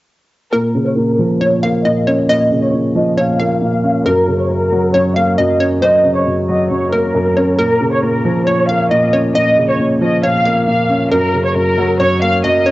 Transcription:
0.52 0.95 A#2 medium
0.52 0.84 A#4 loud
0.52 1.37 A#4 loud
0.75 1.85 C#3 medium
0.86 0.95 C#5 medium
0.97 1.40 A#2 medium
0.97 1.38 A#4 medium
1.19 2.29 F3 medium
1.41 1.83 A#2 medium
1.41 1.60 C#5 medium
1.41 1.62 C#5 medium
1.63 2.73 A#3 medium
1.63 1.82 F5 medium
1.63 1.84 F5 medium
1.85 2.27 A#2 medium
1.85 2.04 D#5 medium
1.85 2.06 D#5 medium
2.07 3.17 C#4 medium
2.07 2.28 C#5 medium
2.29 2.72 A#2 medium
2.29 3.13 D#5 loud
2.29 2.60 D#5 loud
2.51 3.62 C#3 medium
2.62 2.72 C#5 medium
2.74 3.16 A#2 medium
2.95 4.06 F3 medium
2.95 3.14 D#5 medium
3.17 3.60 A#2 medium
3.17 3.38 C#5 medium
3.17 3.59 F5 medium
3.39 4.06 A#3 medium
3.39 3.60 F5 medium
3.61 4.06 A#2 medium
3.61 4.03 F5 medium
3.84 4.06 C#4 medium
4.05 4.48 F#2 medium
4.05 4.37 A#4 medium
4.05 4.90 A#4 medium
4.28 5.38 C#3 medium
4.39 4.48 C#5 medium
4.50 4.92 F#2 medium
4.50 4.91 A#4 medium
4.72 5.82 F#3 medium
4.94 5.37 F#2 medium
4.94 5.13 C#5 medium
4.94 5.15 C#5 medium
5.16 6.26 A#3 medium
5.16 5.35 F5 medium
5.16 5.37 F5 medium
5.38 5.81 F#2 medium
5.38 5.59 D#5 medium
5.38 5.57 D#5 medium
5.60 6.70 C#4 medium
5.60 5.81 C#5 medium
5.82 6.25 F#2 medium
5.82 6.88 C5 loud
5.82 6.13 D#5 loud
6.04 7.14 C#3 medium
6.15 6.25 C#5 medium
6.26 6.69 F#2 medium
6.48 7.59 F#3 medium
6.48 6.67 D#5 medium
6.70 7.13 F#2 medium
6.70 6.89 C#5 medium
6.92 7.59 A#3 medium
6.92 7.55 A#4 medium
6.92 7.34 A#4 medium
7.14 7.59 F#2 medium
7.37 7.59 C#4 medium
7.37 7.58 C#5 medium
7.58 8.01 A#2 medium
7.58 7.90 A#4 loud
7.58 8.43 A#4 loud
7.81 8.91 C#3 medium
7.92 8.01 C#5 medium
8.03 8.46 A#2 medium
8.03 8.44 A#4 medium
8.25 9.35 F3 medium
8.47 8.90 A#2 medium
8.47 8.66 C#5 medium
8.47 8.68 C#5 medium
8.69 9.79 A#3 medium
8.69 8.88 F5 medium
8.69 8.90 F5 medium
8.91 9.33 A#2 medium
8.91 9.10 D#5 medium
8.91 9.12 D#5 medium
9.13 10.23 C#4 medium
9.13 9.34 C#5 medium
9.35 9.78 A#2 medium
9.35 10.19 D#5 loud
9.35 9.66 D#5 loud
9.57 10.67 C#3 medium
9.68 9.78 C#5 medium
9.79 10.22 A#2 medium
10.01 11.11 F3 medium
10.01 10.20 D#5 medium
10.23 10.66 A#2 medium
10.23 10.44 C#5 medium
10.23 10.65 F5 medium
10.45 11.12 A#3 medium
10.45 10.66 F5 medium
10.67 11.12 A#2 medium
10.67 11.09 F5 medium
10.89 11.12 C#4 medium
11.11 11.54 F#2 medium
11.11 11.43 A#4 medium
11.11 11.96 A#4 medium
11.33 12.44 C#3 medium
11.45 11.54 C#5 medium
11.55 11.98 F#2 medium
11.55 11.97 A#4 medium
11.78 12.71 F#3 medium
12.00 12.43 F#2 medium
12.00 12.21 C#5 medium
12.00 12.19 C#5 medium
12.22 12.71 A#3 medium
12.22 12.41 F5 medium
12.22 12.43 F5 medium
12.44 12.71 F#2 medium
12.44 12.65 D#5 medium
12.44 12.63 D#5 medium
12.66 12.71 C#4 medium
12.66 12.71 C#5 medium

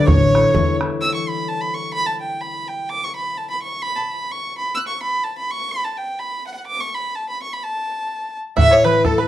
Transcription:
0.00 0.13 D3 medium
0.00 0.42 D4 medium
0.00 0.34 E4 soft
0.00 2.23 G4 soft
0.00 0.35 A4 medium
0.00 1.93 B4 medium
0.07 0.43 A1 loud
0.07 3.39 A3 medium
0.07 0.77 C#5 medium
0.07 0.77 C#5 loud
0.07 0.77 C#5 medium
0.07 bodhran medium
0.35 0.80 E4 medium
0.35 0.81 A4 soft
0.35 0.81 C#5 medium
0.35 bodhran medium
0.55 0.90 E2 loud
0.55 1.06 E3 medium
0.55 bodhran medium
0.80 3.41 E4 soft
0.80 3.01 A4 soft
0.80 2.72 C#5 medium
0.80 bodhran medium
1.01 1.14 E6 loud
1.14 1.30 C#6 medium
1.29 1.50 B5 medium
1.48 1.62 A5 medium
1.61 1.76 B5 medium
1.74 1.93 C#6 medium
1.93 2.07 B5 loud
2.06 2.20 A5 medium
2.21 2.42 G5 medium
2.41 2.69 B5 medium
2.68 2.91 G5 medium
2.89 3.05 D6 loud
3.04 3.15 C#6 medium
3.16 3.39 B5 medium
3.37 3.50 A5 medium
3.50 3.62 B5 medium
3.62 3.83 C#6 medium
3.82 3.96 B5 medium
3.95 3.97 A5 medium
3.95 4.11 B5 medium
4.11 4.33 B5 medium
4.31 4.57 C#6 medium
4.58 4.76 B5 medium
4.74 4.76 E6 loud
4.74 4.79 F#6 medium
4.87 5.02 C#6 medium
5.02 5.25 B5 medium
5.24 5.37 A5 medium
5.38 5.52 B5 medium
5.51 5.73 C#6 medium
5.71 5.86 B5 medium
5.84 5.99 A5 medium
5.97 6.20 G5 medium
6.19 6.46 B5 medium
6.46 6.52 F#5 medium
6.53 6.55 F#5 medium
6.53 6.66 F#5 medium
6.66 6.82 D6 medium
6.80 6.96 C#6 medium
6.94 7.16 B5 medium
7.15 7.28 A5 medium
7.29 7.42 B5 medium
7.42 7.54 C#6 medium
7.53 7.65 B5 medium
7.63 8.37 A5 medium
8.56 9.28 A1 soft
8.56 9.28 A2 soft
8.56 8.71 E5 medium
8.56 8.74 E5 loud
8.56 8.60 F#5 medium
8.56 bodhran medium
8.70 8.83 C#5 medium
8.70 8.85 C#5 loud
8.84 9.28 E3 medium
8.84 9.07 B4 medium
8.84 9.03 B4 medium
8.84 9.05 B4 medium
8.84 bodhran medium
9.05 9.28 A3 soft
9.05 9.17 A4 medium
9.05 9.19 A4 medium
9.05 9.20 A4 medium
9.05 bodhran medium
9.18 9.28 B4 medium

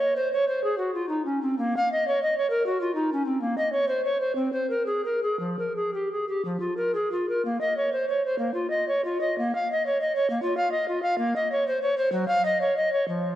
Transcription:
0.00 0.14 C#5 soft
0.16 0.31 C5 soft
0.33 0.47 C#5 soft
0.48 0.63 C5 soft
0.64 0.77 G#4 medium
0.78 0.94 F#4 soft
0.94 1.08 F4 soft
1.09 1.25 D#4 soft
1.25 1.41 C#4 soft
1.42 1.58 C4 soft
1.58 1.75 A#3 medium
1.77 1.91 F5 soft
1.92 2.07 D#5 soft
2.08 2.22 C#5 medium
2.23 2.37 D#5 soft
2.38 2.50 C#5 medium
2.50 2.65 A#4 medium
2.66 2.80 F#4 soft
2.81 2.94 F4 soft
2.95 3.10 D#4 soft
3.13 3.25 C#4 soft
3.26 3.41 C4 soft
3.41 3.57 A#3 medium
3.58 3.72 D#5 soft
3.73 3.88 C#5 soft
3.88 4.04 C5 soft
4.05 4.20 C#5 soft
4.21 4.35 C5 soft
4.35 4.52 C4 medium
4.53 4.69 C5 soft
4.70 4.85 A#4 soft
4.86 5.04 G#4 soft
5.05 5.22 A#4 soft
5.23 5.39 G#4 soft
5.39 5.59 F3 soft
5.59 5.76 A#4 soft
5.76 5.93 G#4 soft
5.94 6.11 G4 soft
6.12 6.28 G#4 soft
6.28 6.44 G4 soft
6.45 6.59 F3 soft
6.60 6.76 F4 soft
6.77 6.94 A#4 soft
6.95 7.11 G#4 soft
7.12 7.29 F4 soft
7.29 7.45 A#4 soft
7.45 7.60 A#3 soft
7.61 7.76 D#5 soft
7.77 7.92 C#5 soft
7.93 8.08 C5 soft
8.09 8.24 C#5 soft
8.26 8.38 C5 soft
8.39 8.53 A#3 soft
8.54 8.70 F4 soft
8.70 8.87 D#5 soft
8.88 9.04 C#5 soft
9.05 9.20 F4 soft
9.21 9.37 D#5 soft
9.38 9.54 A#3 medium
9.55 9.70 F5 soft
9.72 9.86 D#5 soft
9.86 10.00 C#5 soft
10.01 10.15 D#5 medium
10.15 10.29 C#5 medium
10.30 10.42 A#3 medium
10.42 10.56 F4 medium
10.57 10.71 F5 medium
10.72 10.88 D#5 soft
10.88 11.02 F4 medium
11.03 11.17 F5 medium
11.18 11.34 A#3 medium
11.36 11.50 D#5 medium
11.52 11.66 C#5 medium
11.68 11.81 C5 medium
11.82 11.97 C#5 soft
11.98 12.11 C5 medium
12.12 12.27 F#3 medium
12.28 12.45 F5 medium
12.45 12.61 D#5 medium
12.61 12.76 C#5 soft
12.77 12.92 D#5 soft
12.93 13.07 C#5 soft
13.08 13.35 F3 medium

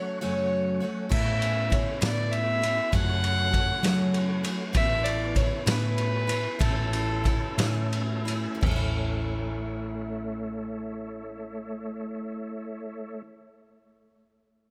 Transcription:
0.00 0.20 F#3 medium
0.00 0.21 A3 medium
0.00 0.21 C#4 medium
0.00 0.20 F#4 medium
0.00 4.70 A4 medium
0.00 0.20 C#5 loud
0.00 1.07 C#5 medium
0.00 1.09 F#5 medium
0.00 6.56 C#6 medium
0.20 0.83 F#2 medium
0.20 0.82 C#3 medium
0.20 0.82 F#3 medium
0.20 0.82 A3 medium
0.20 0.81 C#4 medium
0.20 0.79 F#4 medium
0.20 0.85 C#5 loud
0.80 1.10 F#3 soft
0.80 1.10 A3 medium
0.80 1.11 C#4 medium
0.80 1.11 F#4 medium
1.09 1.71 A2 medium
1.09 1.88 A2 loud
1.09 1.69 E3 medium
1.09 1.70 B3 medium
1.09 1.72 C#4 medium
1.09 1.72 E4 medium
1.09 2.91 E5 medium
1.09 1.74 E5 loud
1.09 2.90 B5 medium
1.09 kick loud
1.09 crash loud
1.42 ride medium
1.70 2.01 E3 medium
1.70 2.00 B3 medium
1.70 2.02 C#4 medium
1.70 2.00 E4 medium
1.70 2.03 C#5 medium
1.70 kick medium
1.70 ride medium
2.01 2.79 A2 loud
2.01 2.63 A2 medium
2.01 2.63 E3 medium
2.01 2.62 B3 medium
2.01 2.61 E4 medium
2.01 2.33 D5 loud
2.01 snare loud
2.01 ride loud
2.32 2.96 E5 loud
2.32 ride medium
2.62 2.94 B3 soft
2.62 2.93 C#4 medium
2.62 2.93 E4 medium
2.62 ride medium
2.92 3.53 F#2 medium
2.92 3.70 F#2 loud
2.92 3.54 C#3 medium
2.92 3.50 F#3 medium
2.92 3.52 A3 medium
2.92 3.53 C#4 medium
2.92 3.53 F#4 medium
2.92 4.73 C#5 medium
2.92 4.73 F#5 medium
2.92 4.45 F#5 loud
2.92 kick loud
2.92 ride loud
3.24 ride medium
3.51 3.83 F#3 medium
3.51 3.83 A3 medium
3.51 3.82 C#4 medium
3.51 3.82 F#4 medium
3.51 kick medium
3.51 ride medium
3.83 4.45 F#2 medium
3.83 4.45 C#3 medium
3.83 4.60 F#3 loud
3.83 4.45 F#3 medium
3.83 4.45 A3 medium
3.83 4.44 C#4 medium
3.83 4.42 F#4 medium
3.83 snare loud
3.83 ride loud
4.14 ride medium
4.44 4.73 F#3 medium
4.44 4.74 A3 medium
4.44 4.75 C#4 medium
4.44 4.74 F#4 medium
4.44 ride medium
4.73 5.52 A1 loud
4.73 5.35 A2 medium
4.73 5.34 E3 medium
4.73 5.35 B3 medium
4.73 5.38 E4 medium
4.73 6.58 B4 medium
4.73 8.58 E5 medium
4.73 5.06 E5 loud
4.73 6.58 A5 medium
4.73 kick loud
4.73 ride loud
5.04 5.38 D5 loud
5.04 ride medium
5.35 5.66 E3 medium
5.35 5.66 B3 medium
5.35 5.66 C#4 medium
5.35 5.65 E4 medium
5.35 5.67 C#5 loud
5.35 kick medium
5.35 ride medium
5.66 6.46 A2 loud
5.66 6.29 A2 medium
5.66 6.59 E3 medium
5.66 6.29 B3 medium
5.66 6.28 C#4 medium
5.66 6.27 E4 medium
5.66 6.62 B4 loud
5.66 snare loud
5.66 ride loud
5.98 ride medium
6.27 6.59 B3 soft
6.27 6.59 C#4 medium
6.27 6.60 E4 medium
6.27 ride medium
6.59 7.43 A1 loud
6.59 7.24 A2 medium
6.59 7.22 E3 medium
6.59 7.24 A3 medium
6.59 7.25 C#4 medium
6.59 7.26 E4 medium
6.59 7.92 A4 medium
6.59 8.60 C#5 medium
6.59 8.61 A5 medium
6.59 8.61 E6 medium
6.59 kick loud
6.59 ride loud
6.93 ride medium
7.24 7.58 E3 medium
7.24 7.58 A3 medium
7.24 7.57 C#4 medium
7.24 7.57 E4 medium
7.24 kick medium
7.24 ride medium
7.58 8.46 A2 loud
7.58 8.28 A2 medium
7.58 8.27 E3 medium
7.58 8.27 A3 medium
7.58 8.26 C#4 medium
7.58 8.24 E4 medium
7.58 snare loud
7.58 ride loud
7.93 ride medium
8.25 8.63 A3 medium
8.25 8.62 C#4 medium
8.25 8.61 E4 medium
8.25 ride medium
8.55 13.17 A2 medium
8.61 13.21 A1 loud
8.61 13.23 E3 medium
8.61 13.22 A3 medium
8.61 13.21 A4 medium
8.61 13.22 C#5 medium
8.61 13.22 E5 medium
8.61 kick loud
8.61 floor tom loud
8.61 crash medium
8.66 13.29 A3 medium
8.71 13.34 C#4 loud
8.76 13.38 E4 medium

